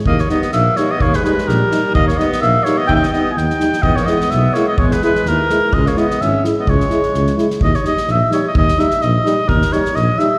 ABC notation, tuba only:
X:1
M:2/4
L:1/8
Q:"Swing 16ths" 1/4=127
K:none
V:1 name="Tuba" clef=bass
^D,, z ^A,,, z | ^D,, z ^A,,, z | ^D,, z ^A,,, z | ^D,, z D,, z |
E,, z B,,, z | E,, z ^D,, z | ^C,, z ^G,,, z | ^C,, z C,, z |
^D,, z ^A,,, z | ^D,, z ^A,,, z | ^D,, z ^A,,, z |]